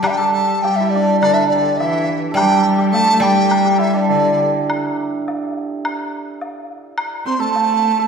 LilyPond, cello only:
\new Staff \with { instrumentName = "Cello" } { \clef bass \time 2/4 \tempo 4 = 104 g4 g4 | d8 d8 e8. r16 | g4 a8 g8~ | g4 d8. r16 |
r2 | r2 | r8 c'16 a4~ a16 | }